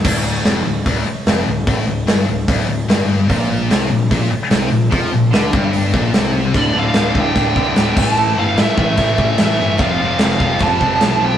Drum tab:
CC |x---------------|----------------|----------------|----------------|
HH |----o---o---o---|o---o---o---o---|o---o---o---o---|o---o---o---o---|
SD |----o-------o---|----o-------o---|----o-------o---|----o-------o---|
BD |o-------o-------|o-------o-------|o-------o-------|o-----o---o-----|

CC |x---x---x---x-x-|x---x---x---x---|x---x---x---x---|
HH |----------------|----------------|----------------|
SD |----o-------o---|----oo------o---|----oo------o---|
BD |o-----o-o-o---o-|------o-o-o-----|o-----o-o-o-----|